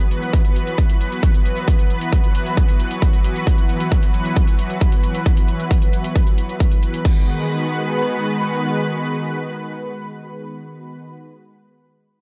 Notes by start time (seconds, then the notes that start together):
Already playing: E3 F#3 B3 F#4 B4
0.00 closed hi-hat
0.11 closed hi-hat
0.22 closed hi-hat
0.33 kick, closed hi-hat
0.45 closed hi-hat
0.56 closed hi-hat
0.67 closed hi-hat
0.78 kick, closed hi-hat
0.90 closed hi-hat
1.01 closed hi-hat
1.12 closed hi-hat
1.23 kick, closed hi-hat
1.34 closed hi-hat
1.45 closed hi-hat
1.57 closed hi-hat
1.68 kick, closed hi-hat
1.79 closed hi-hat
1.90 closed hi-hat
2.01 closed hi-hat
2.13 kick, closed hi-hat
2.24 closed hi-hat
2.35 closed hi-hat
2.46 closed hi-hat
2.57 kick, closed hi-hat
2.69 closed hi-hat
2.80 closed hi-hat
2.91 closed hi-hat
3.02 kick, closed hi-hat
3.13 closed hi-hat
3.24 closed hi-hat
3.36 closed hi-hat
3.47 kick, closed hi-hat
3.58 closed hi-hat
3.69 closed hi-hat
3.80 closed hi-hat
3.92 kick, closed hi-hat
4.03 closed hi-hat
4.14 closed hi-hat
4.25 closed hi-hat
4.36 kick, closed hi-hat
4.48 closed hi-hat
4.59 closed hi-hat
4.70 closed hi-hat
4.81 kick, closed hi-hat
4.92 closed hi-hat
5.03 closed hi-hat
5.15 closed hi-hat
5.26 kick, closed hi-hat
5.37 closed hi-hat
5.48 closed hi-hat
5.60 closed hi-hat
5.71 kick, closed hi-hat
5.82 closed hi-hat
5.93 closed hi-hat
6.04 closed hi-hat
6.16 kick, closed hi-hat
6.27 closed hi-hat
6.38 closed hi-hat
6.49 closed hi-hat
6.60 kick, closed hi-hat
6.72 closed hi-hat
6.83 closed hi-hat
6.94 closed hi-hat
7.05 D#3 G#3 B3 F#4 B4, kick, crash